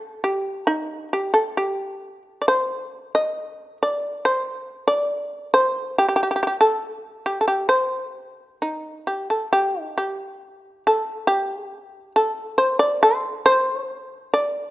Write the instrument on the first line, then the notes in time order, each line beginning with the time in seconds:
shamisen
Already playing: A4
0.24 G4
0.67 D#4
1.13 G4
1.34 A4
1.57 G4
2.42 D5
2.48 C5
3.15 D#5
3.83 D5
4.25 C5
4.88 D5
5.54 C5
5.98 G4
6.09 G4
6.16 G4
6.23 G4
6.31 G4
6.36 G4
6.43 G4
6.47 G4
6.61 A4
7.26 G4
7.41 A4
7.48 G4
7.69 C5
8.62 D#4
9.07 G4
9.30 A4
9.53 G4
9.82 D#4
9.98 G4
10.87 A4
11.27 G4
12.16 A4
12.58 C5
12.79 D5
13.03 C5
13.46 C5
14.34 D5